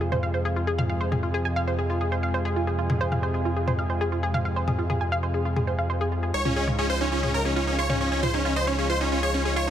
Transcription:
Already playing: analog synth bass F2, analog synth pad C3 F3 G#3 F4 G#4
0.01 synth pluck G#4
0.12 synth pluck C5, mid tom
0.23 synth pluck F5
0.34 synth pluck C5
0.45 synth pluck G#4
0.56 synth pluck F4
0.67 synth pluck G#4
0.78 synth pluck F5, mid tom
0.90 synth pluck F5
1.01 synth pluck C5
1.12 synth pluck G#4, mid tom
1.23 synth pluck F4
1.34 synth pluck G#4
1.45 synth pluck G#5
1.56 synth pluck F5
1.67 synth pluck C5
1.79 synth pluck G#4
1.90 synth pluck F4
2.01 synth pluck G#4
2.12 synth pluck C5
2.23 synth pluck F5
2.34 synth pluck C5
2.45 synth pluck G#4
2.56 synth pluck F4
2.67 synth pluck G#4
2.79 synth pluck F4
2.90 synth pluck G#4, mid tom
3.01 synth pluck C5
3.12 synth pluck F5, mid tom
3.23 synth pluck C5
3.34 synth pluck G#4
3.45 synth pluck F4
3.56 synth pluck G#4
3.67 synth pluck C5, mid tom
3.79 synth pluck F5
3.90 synth pluck C5
4.01 synth pluck G#4
4.12 synth pluck F4
4.23 synth pluck G#4
4.34 synth pluck F5, mid tom
4.45 synth pluck F5
4.56 synth pluck C5
4.68 synth pluck G#4, mid tom
4.79 synth pluck F4
4.90 synth pluck G#4, mid tom
5.01 synth pluck G#5
5.12 synth pluck F5
5.23 synth pluck C5
5.34 synth pluck G#4
5.45 synth pluck F4
5.56 synth pluck G#4, mid tom
5.67 synth pluck C5
5.79 synth pluck F5
5.90 synth pluck C5
6.01 synth pluck G#4
6.12 synth pluck F4
6.23 synth pluck G#4
6.34 analog synth bass C#2, analog synth pad C#3 F3 G#3 D#4 F4, synth pluck D#4, supersaw synth C#5
6.45 supersaw synth C#4, synth pluck F4, mid tom
6.56 supersaw synth C#4, synth pluck G#4
6.68 synth pluck C#5, mid tom
6.79 supersaw synth C#4, synth pluck G#4
6.90 synth pluck F4, supersaw synth C5
7.01 supersaw synth C#4, synth pluck D#4
7.12 supersaw synth C#4, synth pluck F4
7.23 supersaw synth C#4, synth pluck G#4, mid tom
7.34 supersaw synth A#4, synth pluck C#5
7.45 supersaw synth C#4, synth pluck G#4
7.56 supersaw synth C#4, synth pluck F4
7.67 supersaw synth C#4, synth pluck D#4
7.78 synth pluck F4, supersaw synth C#5
7.90 supersaw synth C#4, synth pluck C#5, mid tom
8.01 supersaw synth C#4, synth pluck C#5
8.12 supersaw synth C#4, synth pluck G#4
8.23 synth pluck F4, supersaw synth C5, mid tom
8.34 supersaw synth C#4, synth pluck D#4
8.45 supersaw synth C#4, synth pluck F4
8.56 supersaw synth C5, synth pluck D#5
8.67 supersaw synth C#4, synth pluck C#5
8.78 supersaw synth C#4, synth pluck G#4
8.89 synth pluck F4, supersaw synth C5
9.01 supersaw synth C#4, synth pluck D#4
9.12 supersaw synth C#4, synth pluck F4
9.23 synth pluck G#4, supersaw synth C#5
9.34 supersaw synth C#4, synth pluck C#5
9.45 supersaw synth C#4, synth pluck G#4
9.56 synth pluck F4, supersaw synth C#5

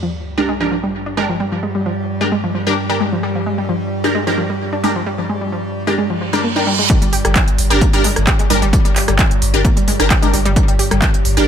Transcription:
Already playing: synth drone G2 G3, sub drop
0.03 synth arpeggio sound F3
0.38 synth arpeggio sound G#3, synth stab D4 G4 A#4
0.48 synth arpeggio sound G#3
0.60 synth arpeggio sound F3, synth stab D4 G4 A#4
0.71 synth arpeggio sound F3
0.83 synth arpeggio sound G3
1.06 synth arpeggio sound D4
1.17 synth arpeggio sound G#3, synth stab D4 G4 A#4
1.29 synth arpeggio sound F3
1.40 synth arpeggio sound G3
1.52 synth arpeggio sound F3
1.63 synth arpeggio sound G#3
1.75 synth arpeggio sound G3
1.86 synth arpeggio sound F3
2.21 synth arpeggio sound G#3, synth stab D4 G4 A#4
2.32 synth arpeggio sound G#3
2.44 synth arpeggio sound F3
2.55 synth arpeggio sound F3
2.67 synth arpeggio sound G3, synth stab D4 G4 A#4
2.89 synth arpeggio sound D4, synth stab D4 G4 A#4
3.00 synth arpeggio sound G#3
3.12 synth arpeggio sound F3
3.23 synth arpeggio sound G3
3.35 synth arpeggio sound F3
3.46 synth arpeggio sound G#3
3.58 synth arpeggio sound G3
3.69 synth arpeggio sound F3
4.04 synth arpeggio sound G#3, synth stab D4 G4 A#4
4.15 synth arpeggio sound G#3
4.27 synth arpeggio sound F3, synth stab D4 G4 A#4
4.38 synth arpeggio sound F3
4.50 synth arpeggio sound G3
4.73 synth arpeggio sound D4
4.84 synth arpeggio sound G#3, synth stab D4 G4 A#4
4.96 synth arpeggio sound F3
5.06 synth arpeggio sound G3
5.18 synth arpeggio sound F3
5.29 synth arpeggio sound G#3
5.41 synth arpeggio sound G3
5.52 synth arpeggio sound F3
5.87 synth arpeggio sound G#3, synth stab D4 G4 A#4
5.98 synth arpeggio sound G#3, reverse cymbal
6.10 synth arpeggio sound F3
6.21 synth arpeggio sound F3
6.33 synth arpeggio sound G#3, synth stab D4 G4 A#4
6.44 synth arpeggio sound A#3
6.56 synth stab D4 G4 A#4, synth arpeggio sound D#4
6.67 synth arpeggio sound G3
6.79 synth arpeggio sound G#3
6.90 synth drone G2 G3, synth arpeggio sound G3, kick, closed hi-hat
7.02 sub bass G1, synth arpeggio sound G3, closed hi-hat
7.13 synth arpeggio sound G4, open hi-hat
7.25 sub bass G1, synth arpeggio sound G3, cross-stick, closed hi-hat
7.36 synth arpeggio sound F3, kick, clap, closed hi-hat
7.47 sub bass G1, closed hi-hat
7.58 sub bass G1, open hi-hat
7.70 sub bass G1, synth stab D4 G4 A#4, closed hi-hat
7.81 synth arpeggio sound A#3, kick, closed hi-hat
7.93 sub bass G1, synth arpeggio sound G3, synth stab D4 G4 A#4, closed hi-hat
8.04 synth arpeggio sound G#3, open hi-hat
8.16 sub bass G1, cross-stick, closed hi-hat
8.27 synth arpeggio sound G4, kick, clap, closed hi-hat
8.39 sub bass G1, synth arpeggio sound G#3, closed hi-hat
8.50 sub bass G1, synth arpeggio sound G3, synth stab D4 G4 A#4, open hi-hat
8.62 sub bass G1, synth arpeggio sound G3, closed hi-hat
8.73 synth arpeggio sound G3, kick, closed hi-hat
8.85 sub bass G1, synth arpeggio sound G3, closed hi-hat
8.96 synth arpeggio sound G4, clap, open hi-hat
9.08 sub bass G1, synth arpeggio sound G3, cross-stick, closed hi-hat
9.19 synth arpeggio sound F3, kick, clap, closed hi-hat
9.31 sub bass G1, closed hi-hat
9.42 sub bass G1, open hi-hat
9.54 sub bass G1, synth stab D4 G4 A#4, closed hi-hat
9.65 synth arpeggio sound A#3, kick, closed hi-hat
9.77 sub bass G1, synth arpeggio sound G3, closed hi-hat
9.88 synth arpeggio sound G#3, open hi-hat
9.99 sub bass G1, synth stab D4 G4 A#4, cross-stick, closed hi-hat
10.10 synth arpeggio sound G4, kick, clap, closed hi-hat
10.22 sub bass G1, synth arpeggio sound G#3, synth stab D4 G4 A#4, closed hi-hat
10.33 sub bass G1, synth arpeggio sound G3, open hi-hat
10.45 sub bass G1, synth arpeggio sound G3, closed hi-hat
10.56 synth arpeggio sound G3, kick, closed hi-hat
10.68 sub bass G1, synth arpeggio sound G3, closed hi-hat
10.79 synth arpeggio sound G4, open hi-hat
10.91 sub bass G1, synth arpeggio sound G3, cross-stick, closed hi-hat
11.02 synth arpeggio sound F3, kick, clap, closed hi-hat
11.14 sub bass G1, closed hi-hat
11.25 sub bass G1, open hi-hat
11.37 sub bass G1, synth stab D4 G4 A#4, closed hi-hat

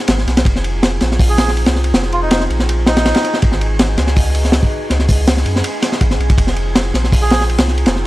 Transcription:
Already playing: synth texture G#5
0.08 sub bass G#1, snare, ride
0.18 snare
0.27 sub bass B1, snare, ride
0.37 snare, ride
0.45 sub bass F1, ambient pad C4 D#4 F4 G#4 C5, synth texture G#5, kick, ride
0.56 snare
0.64 ride
0.83 snare, ride
1.01 sub bass A#1, ambient pad C4 D#4 F4 G#4 C5, snare, ride
1.11 snare
1.19 kick, open hi-hat
1.29 melodica G#4
1.38 snare, ride
1.48 snare
1.57 ride
1.66 sub bass C2, snare, ride
1.76 snare
1.84 ride
1.94 sub bass F1, ambient pad C4 D#4 F4 G#4 C5, snare, ride
2.03 snare
2.12 melodica F4, ride
2.22 melodica D#4
2.31 snare, ride
2.40 snare
2.49 sub bass A#1, ambient pad C4 D#4 F4 G#4 C5, ride
2.59 snare
2.69 ride
2.86 melodica D#4, snare, ride
2.97 snare, ride
3.06 snare, ride
3.14 snare, ride
3.24 snare, ride
3.34 snare
3.42 sub bass G#1, ambient pad D#4 F#4 G#4 B4 D#5, kick, ride
3.52 snare
3.61 ride
3.79 snare, ride
3.97 sub bass C#2, ambient pad D#4 F#4 G#4 B4 D#5, snare, ride
4.07 snare
4.16 kick, open hi-hat
4.35 ride
4.44 snare
4.52 snare, ride
4.63 kick
4.90 sub bass C#2, ambient pad G#3 B3 C#4 E4 G#4, snare, ride
4.99 snare
5.08 kick, open hi-hat
5.27 snare, ride
5.37 snare
5.46 sub bass F#2, ambient pad G#3 B3 C#4 E4 G#4, ride
5.56 snare
5.64 ride
5.82 snare, ride
5.92 snare
6.01 sub bass G#1, kick, ride
6.11 snare
6.20 sub bass B1, ride
6.30 kick, ride
6.38 sub bass F1, ambient pad C4 D#4 F4 G#4 C5, kick, ride
6.47 snare
6.56 ride
6.75 snare, ride
6.94 sub bass A#1, ambient pad C4 D#4 F4 G#4 C5, snare, ride
7.04 snare
7.12 kick, open hi-hat
7.22 melodica G#4
7.30 snare, ride
7.41 snare
7.49 ride
7.58 sub bass C2, snare, ride
7.68 snare
7.78 ride
7.86 sub bass F1, ambient pad C4 D#4 F4 G#4 C5, snare, ride
7.96 snare

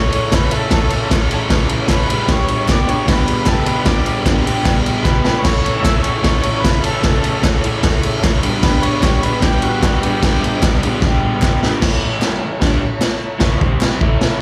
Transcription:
Already playing: overdriven electric guitar A2 E3 A3 C#4 A4, transistor combo organ E4 A4 C#5
0.12 ride
0.32 overdriven electric guitar A2 E3 A3 C#4 A4, transistor combo organ B4, kick, snare, clap, ride
0.51 overdriven electric guitar A2 E3 A3 C#4 A4, transistor combo organ A4, ride
0.70 overdriven electric guitar A2 E3 A3 C#4 A4, transistor combo organ A4, kick, snare, ride
0.90 ride
1.11 overdriven electric guitar A2 E3 A3 C#4 A4, kick, snare, clap, ride
1.31 overdriven electric guitar A2 E3 A3 C#4 A4, ride
1.50 overdriven electric guitar A2 E3 A3 C#4, kick, snare, ride
1.54 overdriven electric guitar A4
1.69 ride
1.88 overdriven electric guitar A2 E3 A3 C#4 A4, kick, snare, clap, ride
1.93 transistor combo organ B4
2.07 overdriven electric guitar G2 D3 G3 B3 D4 G4, transistor combo organ D4 G4 B4, ride
2.28 overdriven electric guitar G2 D3 G3 B3 D4 G4, transistor combo organ C#5, kick, snare, ride
2.48 ride
2.68 overdriven electric guitar G2 D3 G3 B3 D4 G4, transistor combo organ D5, kick, snare, clap, ride
2.88 overdriven electric guitar G2 D3 G3 B3 D4 G4, transistor combo organ C#5, ride
3.06 overdriven electric guitar G2 D3 G3 B3 D4 G4, transistor combo organ B4, kick, snare, ride
3.28 ride
3.45 overdriven electric guitar G2 D3 G3 B3 D4 G4, transistor combo organ A4, kick, snare, clap, ride
3.66 overdriven electric guitar G2 D3 G3 B3 D4 G4, transistor combo organ B4, ride
3.85 overdriven electric guitar G2 D3 G3 B3 D4 G4, transistor combo organ D5, kick, snare, ride
4.06 ride
4.26 overdriven electric guitar G2 D3 G3 B3 D4 G4, kick, snare, clap, ride
4.44 overdriven electric guitar G2 D3 G3 B3 D4 G4, ride
4.65 overdriven electric guitar G2 D3 G3 B3 D4 G4, kick, snare, ride
4.86 ride
5.03 overdriven electric guitar G2 D3 G3 B3 D4 G4, transistor combo organ B4, kick, snare, clap
5.23 overdriven electric guitar G2 D3 G3 B3 D4 G4, snare
5.39 overdriven electric guitar A2, transistor combo organ E4 C#5
5.43 overdriven electric guitar E3 A3 C#4 A4, transistor combo organ A4 C#5, kick, snare, crash
5.66 ride
5.80 overdriven electric guitar A2 E3 A3 C#4 A4, transistor combo organ E5, snare
5.85 kick, clap, ride
6.02 overdriven electric guitar A2 E3 A3 C#4 A4, transistor combo organ C#5, ride
6.21 overdriven electric guitar A2 E3 A3 C#4 A4, transistor combo organ C#5, kick, snare, ride
6.43 ride
6.60 overdriven electric guitar A2, transistor combo organ B4
6.64 overdriven electric guitar E3 A3 C#4 A4, kick, snare, clap, ride
6.82 overdriven electric guitar A2 E3 A3, transistor combo organ A4, ride
6.87 overdriven electric guitar C#4 A4
7.03 overdriven electric guitar A2 E3 A3 C#4 A4, transistor combo organ A4, kick, snare, ride
7.24 ride
7.43 overdriven electric guitar A2 E3 A3 C#4 A4, kick, snare, clap, ride
7.64 overdriven electric guitar A2 E3 A3 C#4 A4, ride
7.83 overdriven electric guitar A2 E3 A3 C#4 A4, kick, snare, ride
8.03 ride
8.23 overdriven electric guitar A2 E3 A3 C#4 A4, kick, snare, clap, ride
8.42 overdriven electric guitar G2 D3 G3 B3 D4 G4, transistor combo organ G3 D4 B4, ride
8.62 overdriven electric guitar G2 D3 G3 B3 D4 G4, transistor combo organ B4, kick, snare, ride
8.82 transistor combo organ C#5, ride
9.02 overdriven electric guitar G2 D3 G3 B3 D4 G4, transistor combo organ C#5, kick, snare, clap, ride
9.23 overdriven electric guitar G2 D3 G3 B3 D4 G4, transistor combo organ B4, ride
9.42 overdriven electric guitar G2 D3 G3 B3 D4 G4, transistor combo organ G4, kick, snare, ride
9.62 transistor combo organ F#4, ride
9.82 overdriven electric guitar G2 D3 G3 B3 D4 G4, kick, snare, clap, ride
10.02 overdriven electric guitar G2 D3 G3 B3, transistor combo organ G4, ride
10.06 overdriven electric guitar D4 G4
10.22 overdriven electric guitar G2 D3 G3 B3 D4 G4, kick, snare, ride
10.44 ride
10.62 overdriven electric guitar G2 D3 G3 B3 D4 G4, kick, snare, clap, ride
10.83 overdriven electric guitar G2 D3 G3 B3 D4 G4, ride
11.01 overdriven electric guitar G2 D3 G3 D4, kick, snare
11.06 overdriven electric guitar B3 G4
11.42 overdriven electric guitar G2 D3 G3 B3 D4 G4, kick, snare, clap
11.63 overdriven electric guitar G2 D3 G3 B3 D4 G4, snare
11.82 overdriven electric guitar A2 E3 A3, transistor combo organ E4 A4 C#5, kick, snare, crash
12.22 overdriven electric guitar G2 D3 G3, snare, clap, crash
12.41 overdriven electric guitar A2 E3
12.60 overdriven electric guitar G3 D4 G4, kick, snare, crash
13.01 snare, clap, crash
13.39 overdriven electric guitar A2 E3 A3, kick, snare, crash
13.60 overdriven electric guitar C3 G3 C4, transistor combo organ C4 G4 C5, kick
13.81 snare, clap, crash
13.99 overdriven electric guitar A2 E3 A3, transistor combo organ E4 A4 C#5, kick
14.21 snare, crash

